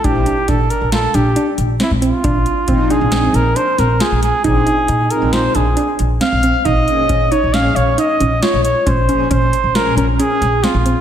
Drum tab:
HH |xxxxxxxxxx|xxxxxxxxxx|xxxxxxxxxx|xxxxxxxxxx|
SD |--o-oo--o-|----o--ooo|----o---o-|----o---o-|
BD |o-o-------|o-o-------|o---------|o-o-------|

HH |xxxxxxxxxx|
SD |----o--oo-|
BD |o-o-------|